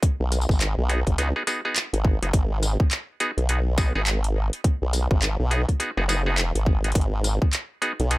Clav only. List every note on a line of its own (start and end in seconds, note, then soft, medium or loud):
0.89 1.00 B3 medium
0.89 1.00 D#4 medium
0.89 1.00 F#4 medium
0.89 1.00 G#4 loud
1.18 1.29 B3 loud
1.18 1.29 D#4 medium
1.18 1.29 F#4 medium
1.18 1.29 G#4 loud
1.36 1.43 B3 medium
1.36 1.43 D#4 medium
1.36 1.43 F#4 medium
1.36 1.43 G#4 loud
1.47 1.61 B3 medium
1.47 1.61 D#4 medium
1.47 1.61 F#4 medium
1.47 1.61 G#4 loud
1.65 1.76 B3 medium
1.65 1.76 D#4 medium
1.65 1.76 F#4 medium
1.65 1.76 G#4 medium
2.23 2.29 B3 medium
2.23 2.29 D#4 medium
2.23 2.29 F#4 medium
2.23 2.29 G#4 medium
3.20 3.31 B3 loud
3.20 3.31 D#4 medium
3.20 3.31 F#4 medium
3.20 3.31 G#4 loud
3.49 3.60 B3 medium
3.49 3.60 D#4 medium
3.49 3.60 F#4 medium
3.49 3.60 G#4 medium
3.78 3.93 B3 loud
3.78 3.93 D#4 medium
3.78 3.93 F#4 medium
3.78 3.93 G#4 loud
3.95 4.02 B3 loud
3.95 4.02 D#4 medium
3.95 4.02 F#4 medium
3.95 4.02 G#4 loud
5.51 5.62 B3 loud
5.51 5.62 D#4 medium
5.51 5.62 F#4 medium
5.51 5.62 G#4 loud
5.80 5.90 B3 loud
5.80 5.90 D#4 medium
5.80 5.90 F#4 medium
5.80 5.90 G#4 loud
5.97 6.04 B3 medium
5.97 6.04 D#4 medium
5.97 6.04 F#4 medium
5.97 6.04 G#4 medium
6.09 6.22 B3 loud
6.09 6.22 D#4 medium
6.09 6.22 F#4 medium
6.09 6.22 G#4 loud
6.26 6.37 B3 medium
6.26 6.37 D#4 medium
6.26 6.37 F#4 medium
6.26 6.37 G#4 loud
6.84 6.91 B3 medium
6.84 6.91 D#4 medium
6.84 6.91 F#4 medium
6.84 6.91 G#4 medium
7.82 7.92 B3 loud
7.82 7.92 D#4 medium
7.82 7.92 F#4 medium
7.82 7.92 G#4 loud
8.11 8.18 B3 medium
8.11 8.18 D#4 medium
8.11 8.18 F#4 medium
8.11 8.18 G#4 medium